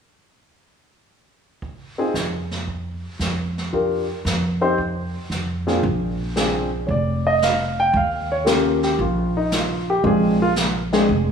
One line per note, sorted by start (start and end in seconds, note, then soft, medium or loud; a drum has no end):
1.62 brush sweep soft
1.62 kick soft
1.98 2.13 C4 medium
1.98 2.13 D#4 medium
1.98 2.13 F4 medium
1.98 2.14 G#4 medium
2.14 3.03 F2 medium
2.14 snare medium
2.14 hi-hat pedal medium
2.51 snare soft
2.68 brush sweep soft
2.68 kick soft
3.19 4.08 F2 medium
3.19 snare soft
3.19 hi-hat pedal soft
3.58 snare soft
3.73 4.06 D4 soft
3.73 4.06 F4 medium
3.73 4.06 G4 soft
3.73 4.06 A#4 medium
3.73 brush sweep soft
3.73 kick soft
4.25 5.14 F2 medium
4.25 snare soft
4.25 hi-hat pedal soft
4.61 4.76 C4 medium
4.61 4.76 D#4 medium
4.61 4.77 G4 medium
4.61 4.77 C5 medium
4.78 brush sweep soft
4.78 kick soft
5.30 5.79 F2 medium
5.30 snare soft
5.30 hi-hat pedal soft
5.67 5.82 A#2 medium
5.67 5.82 C4 medium
5.67 5.82 D4 medium
5.67 5.82 F4 medium
5.67 5.82 G#4 medium
5.67 snare soft
5.83 6.84 A#1 medium
5.83 brush sweep medium
5.83 kick soft
6.36 6.69 C4 medium
6.36 6.69 D4 medium
6.36 6.69 F4 medium
6.36 6.69 G#4 medium
6.36 snare medium
6.36 hi-hat pedal medium
6.87 7.90 F1 medium
6.87 6.91 C#5 soft
6.87 7.25 D5 medium
6.87 brush sweep soft
6.87 kick soft
7.27 7.42 D#5 medium
7.42 7.78 F5 medium
7.42 snare medium
7.42 hi-hat pedal medium
7.80 7.94 G5 medium
7.93 8.95 D#2 loud
7.93 8.31 F5 medium
7.93 brush sweep soft
7.93 kick soft
8.32 8.47 C#5 medium
8.45 8.79 A#3 medium
8.45 8.79 C#4 medium
8.45 8.79 F4 medium
8.45 8.79 G4 medium
8.45 8.48 A4 soft
8.45 snare medium
8.45 hi-hat pedal medium
8.49 8.83 A#4 medium
8.83 8.99 G4 medium
8.83 snare soft
8.99 10.00 A#1 medium
8.99 9.35 F4 medium
8.99 brush sweep soft
8.99 kick soft
9.37 9.52 D#4 medium
9.52 9.88 F4 medium
9.52 snare medium
9.52 hi-hat pedal medium
9.90 10.05 G4 medium
10.03 11.05 A#1 medium
10.03 10.36 G#3 medium
10.03 10.36 C4 soft
10.03 10.37 D4 soft
10.03 10.37 F4 medium
10.03 10.41 G#4 medium
10.03 brush sweep soft
10.03 kick soft
10.42 10.51 F4 medium
10.56 snare medium
10.56 hi-hat pedal medium
10.93 11.07 G#3 medium
10.93 11.08 C4 medium
10.93 11.08 D4 medium
10.93 11.08 G#4 medium
10.93 snare soft
11.09 11.32 F1 medium
11.09 brush sweep soft
11.09 kick soft